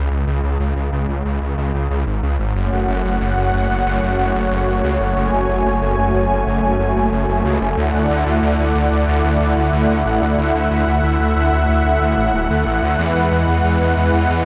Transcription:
0.11 0.25 C#2 medium
0.27 0.41 C#2 medium
0.44 0.58 C#2 medium
0.60 0.74 C#2 loud
0.76 0.90 C#2 medium
0.92 1.07 C#2 medium
1.09 1.23 C#2 medium
1.25 1.39 C#2 loud
1.42 1.56 C#2 medium
1.58 1.72 C#2 medium
1.74 1.88 C#2 medium
1.90 2.05 C#2 loud
2.07 2.21 G#1 medium
2.23 2.37 C#2 medium
2.39 2.53 G#1 medium
2.55 2.70 F#1 loud
2.55 12.95 A3 medium
2.55 7.73 F#4 medium
2.55 7.73 C#5 medium
2.55 5.14 F#5 medium
2.72 2.86 F#1 medium
2.88 3.02 F#1 loud
3.05 3.19 F#1 medium
3.21 3.35 F#1 loud
3.37 3.51 F#1 medium
3.53 3.68 F#1 loud
3.70 3.84 F#1 medium
3.86 4.00 F#1 loud
4.02 4.16 F#1 medium
4.19 4.33 F#1 medium
4.35 4.49 F#1 medium
4.51 4.65 F#1 loud
4.68 4.82 F#1 medium
4.84 4.98 C#2 medium
5.00 5.14 F#1 medium
5.16 5.31 F#1 loud
5.16 7.75 G#5 medium
5.33 5.47 F#1 medium
5.49 5.63 F#1 medium
5.65 5.79 F#1 medium
5.82 5.96 F#1 loud
5.98 6.12 F#1 medium
6.14 6.29 F#1 medium
6.31 6.45 F#1 medium
6.47 6.61 F#1 loud
6.63 6.77 F#1 medium
6.80 6.94 F#1 medium
6.96 7.10 F#1 medium
7.12 7.26 F#1 loud
7.29 7.43 F#1 medium
7.45 7.59 C#2 medium
7.61 7.75 F#1 medium
7.77 7.92 D2 loud
7.77 12.95 E4 medium
7.77 10.36 D5 medium
7.77 14.45 F#5 medium
7.94 8.08 D2 medium
8.10 8.24 D2 medium
8.26 8.40 D2 medium
8.43 8.57 D2 loud
8.59 8.73 D2 medium
8.75 8.89 D2 loud
8.91 9.06 D2 medium
9.08 9.22 D2 loud
9.24 9.38 D2 medium
9.40 9.54 D2 medium
9.57 9.71 D2 medium
9.73 9.87 D2 loud
9.89 10.03 D2 medium
10.06 10.20 A1 medium
10.22 10.36 D2 medium
10.38 10.52 D2 loud
10.38 12.96 E5 medium
10.54 10.69 D2 medium
10.71 10.85 D2 medium
10.87 11.01 D2 medium
11.03 11.18 D2 loud
11.20 11.34 D2 medium
11.36 11.50 D2 medium
11.52 11.67 D2 medium
11.69 11.83 D2 loud
11.85 11.99 D2 medium
12.01 12.15 D2 medium
12.17 12.32 A1 medium
12.34 12.48 D1 loud
12.50 12.64 D2 medium
12.66 12.81 A1 medium
12.83 12.97 D2 medium
12.99 13.13 E2 loud
12.99 14.45 G#3 medium
12.99 14.45 E4 medium
12.99 14.45 B4 medium
13.15 13.29 E2 medium
13.31 13.46 E2 loud
13.48 13.62 E2 medium
13.64 13.78 E2 loud
13.81 13.95 E2 medium
13.97 14.11 E2 loud
14.13 14.27 E2 medium
14.30 14.44 E2 loud

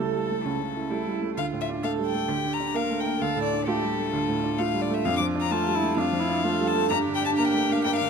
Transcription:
0.00 0.42 C#2 soft
0.00 0.61 C#3 soft
0.00 0.33 G3 medium
0.00 0.23 A3 soft
0.00 0.77 E4 soft
0.00 0.45 A4 medium
0.00 1.12 A4 medium
0.15 0.30 G3 soft
0.30 0.54 A3 soft
0.44 1.35 C#2 soft
0.44 0.92 C#4 soft
0.61 0.85 C#3 soft
0.77 1.00 E4 soft
0.90 1.25 G3 soft
0.90 1.16 A3 soft
0.90 1.36 E4 medium
1.07 1.22 G3 soft
1.22 1.37 A3 soft
1.36 2.27 D2 soft
1.36 1.84 F4 medium
1.36 1.46 F5 medium
1.53 1.78 A2 soft
1.61 1.69 E5 medium
1.69 1.93 D4 soft
1.83 2.08 A3 soft
1.83 2.18 A3 medium
1.83 2.30 A4 medium
1.83 1.92 F5 medium
1.99 2.14 G3 soft
2.07 2.55 G5 medium
2.14 2.29 A3 soft
2.28 3.18 D2 medium
2.28 2.76 G4 medium
2.44 2.69 D3 soft
2.54 2.78 A#5 medium
2.60 2.85 D4 soft
2.74 2.99 A#3 soft
2.74 3.09 A#3 medium
2.74 3.20 A#4 medium
2.74 3.02 F5 medium
2.90 3.06 A3 soft
3.00 3.23 G5 medium
3.06 3.22 A#3 soft
3.21 4.10 D2 medium
3.21 3.65 A4 medium
3.21 3.43 F5 medium
3.36 3.61 A2 soft
3.44 3.67 D5 medium
3.52 3.76 D4 soft
3.66 3.92 A3 soft
3.66 4.02 F4 medium
3.66 4.12 G4 medium
3.66 4.60 A4 medium
3.83 3.98 G3 soft
3.98 4.23 A3 soft
4.13 5.03 D2 medium
4.13 6.40 F4 medium
4.29 4.53 A2 soft
4.44 4.69 D4 soft
4.58 4.84 A3 soft
4.58 4.94 F4 medium
4.58 4.83 F5 medium
4.74 4.90 G3 soft
4.82 4.96 D5 medium
4.90 5.05 A3 soft
4.94 5.07 E5 medium
5.05 5.95 F2 medium
5.05 5.53 D4 medium
5.05 5.17 F5 loud
5.17 5.45 F3 soft
5.17 5.25 D6 medium
5.35 5.61 D4 medium
5.40 5.53 A#5 medium
5.51 5.76 A3 medium
5.51 5.77 F4 medium
5.51 5.97 A5 medium
5.67 5.83 G3 soft
5.75 5.99 E4 medium
5.83 6.07 A3 soft
5.97 6.87 F2 medium
5.97 6.22 D4 medium
5.97 6.69 F5 medium
6.13 6.38 F3 soft
6.20 6.45 E4 medium
6.29 6.53 D4 soft
6.44 6.69 A3 soft
6.44 6.90 F4 medium
6.44 6.93 A4 medium
6.60 6.75 G3 soft
6.68 6.89 A5 medium
6.75 6.91 A3 medium
6.90 7.82 G2 medium
6.90 7.37 D4 medium
6.90 7.86 G4 medium
6.90 6.98 A#5 medium
7.07 7.32 D3 soft
7.15 7.25 G5 medium
7.23 7.48 D4 soft
7.23 7.30 A5 medium
7.37 7.63 A#3 medium
7.37 8.10 D4 medium
7.37 7.48 A#5 medium
7.48 7.74 G5 medium
7.54 7.70 A3 soft
7.70 7.95 A#3 soft
7.70 7.84 F5 medium
7.84 8.10 G2 medium
7.84 8.10 A#4 medium
7.84 7.96 G5 loud
7.97 8.10 F5 medium
8.01 8.10 D3 medium

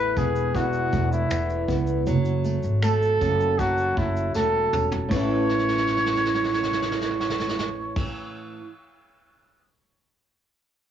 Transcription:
0.00 0.13 A1 medium
0.00 0.54 E2 medium
0.00 1.31 E3 medium
0.00 0.93 A3 medium
0.00 0.19 B4 loud
0.17 0.89 E1 medium
0.17 1.67 B3 medium
0.17 0.57 G#4 medium
0.17 kick medium
0.17 tambourine soft
0.36 shaker medium
0.55 2.15 E2 medium
0.55 1.12 F#4 medium
0.55 kick medium
0.55 tambourine soft
0.55 shaker medium
0.73 shaker soft
0.92 1.28 E1 medium
0.92 2.44 A3 medium
0.92 kick medium
0.92 tambourine soft
0.92 shaker soft
1.12 1.65 E4 medium
1.12 shaker soft
1.31 1.66 E1 medium
1.31 2.07 E3 medium
1.31 finger snap loud
1.31 tambourine medium
1.31 shaker medium
1.50 shaker soft
1.69 2.08 C#2 medium
1.69 2.14 B3 medium
1.69 kick medium
1.69 tambourine soft
1.69 shaker soft
1.87 shaker medium
2.07 2.60 F#1 medium
2.07 3.57 F#3 medium
2.07 tambourine soft
2.07 shaker medium
2.25 shaker soft
2.44 2.82 A3 medium
2.44 tambourine medium
2.44 shaker soft
2.63 3.17 G#1 medium
2.63 shaker medium
2.82 3.96 A3 medium
2.82 3.60 A4 loud
2.82 finger snap loud
2.82 tambourine medium
2.82 shaker medium
3.02 shaker soft
3.21 3.93 F#1 medium
3.21 4.73 C#4 medium
3.21 kick medium
3.21 tambourine soft
3.21 shaker soft
3.40 shaker soft
3.59 5.11 F#3 medium
3.59 3.99 F#4 medium
3.59 kick medium
3.59 tambourine soft
3.59 shaker medium
3.77 shaker soft
3.97 4.32 F#1 medium
3.97 4.35 A3 medium
3.97 4.35 E4 medium
3.97 kick medium
4.16 shaker soft
4.34 4.70 E1 medium
4.34 5.13 A3 medium
4.34 4.88 A4 medium
4.34 snare soft
4.34 tambourine medium
4.73 5.08 E1 medium
4.73 5.14 C#4 soft
4.73 mid tom medium
4.73 tambourine soft
4.92 floor tom medium
5.09 8.07 A1 medium
5.09 8.59 A2 medium
5.09 8.61 E3 medium
5.09 8.08 C#5 medium
5.09 kick loud
5.09 crash medium
5.09 tambourine medium
5.13 8.63 A3 medium
5.13 8.64 C#4 medium
5.13 8.64 E4 medium
5.49 snare soft
5.59 snare soft
5.68 snare soft
5.78 snare soft
5.87 snare medium
5.97 snare medium
6.06 snare medium
6.16 snare medium
6.25 snare medium
6.35 snare medium
6.44 snare medium
6.54 snare medium
6.63 snare medium
6.73 snare medium
6.82 snare medium
6.92 snare medium
7.01 snare medium
7.10 snare medium
7.20 snare medium
7.30 snare medium
7.39 snare medium
7.49 snare medium
7.58 snare medium
7.96 kick loud
7.96 crash loud

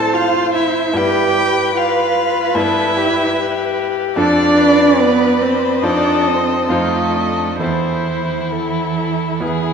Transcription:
0.00 0.97 A2 medium
0.00 0.97 C4 medium
0.00 0.94 E4 soft
0.00 0.15 A4 loud
0.00 0.97 A4 soft
0.00 0.91 C5 medium
0.00 0.95 C5 medium
0.00 0.16 A5 medium
0.13 0.56 F4 loud
0.13 0.54 F5 medium
0.54 0.97 E4 medium
0.54 0.98 E5 medium
0.93 2.51 G2 medium
0.93 2.51 B3 soft
0.93 2.51 E4 medium
0.93 1.74 G4 loud
0.93 4.13 B4 medium
0.93 2.52 B4 soft
0.93 1.35 B4 medium
0.93 1.78 G5 medium
1.35 2.58 B4 medium
1.75 2.57 F4 medium
1.75 2.56 F5 medium
2.55 4.13 G2 medium
2.55 4.13 B3 medium
2.55 4.13 E4 medium
2.55 3.77 E4 loud
2.55 2.99 A4 medium
2.55 4.14 B4 medium
2.55 3.76 E5 medium
2.97 3.36 G4 medium
3.37 4.19 G4 medium
4.16 5.79 F2 medium
4.16 5.80 D4 soft
4.16 5.01 D4 loud
4.16 5.80 F4 medium
4.16 5.80 A4 medium
4.16 4.56 A4 medium
4.16 5.01 D5 medium
4.16 5.80 D5 medium
4.57 5.85 B4 medium
4.99 5.43 B3 loud
4.99 5.43 B4 medium
5.41 5.84 C4 medium
5.41 5.86 C5 medium
5.82 6.67 F2 medium
5.82 6.28 D4 medium
5.82 6.68 D#4 soft
5.82 6.68 F4 soft
5.82 6.72 A4 medium
5.82 6.68 C5 medium
5.82 6.29 D5 medium
5.82 6.69 D#5 medium
6.27 6.73 C4 medium
6.27 6.73 C5 medium
6.69 7.57 F2 medium
6.69 7.60 A3 medium
6.69 7.57 D#4 medium
6.69 7.57 F4 soft
6.69 7.17 F4 medium
6.69 7.60 A4 medium
6.69 7.58 C5 medium
6.69 7.59 D#5 medium
7.16 7.64 D4 medium
7.60 9.37 E2 soft
7.60 9.73 E3 medium
7.60 9.38 E4 soft
7.60 9.73 E4 medium
7.60 8.43 E4 medium
7.60 9.38 A4 soft
7.60 8.53 C5 medium
7.60 9.38 C5 soft
8.51 9.38 E4 medium
8.51 9.43 A4 soft
9.40 9.73 E2 soft
9.40 9.73 E4 soft
9.40 9.73 G#4 soft
9.40 9.73 G#4 medium
9.40 9.73 B4 soft

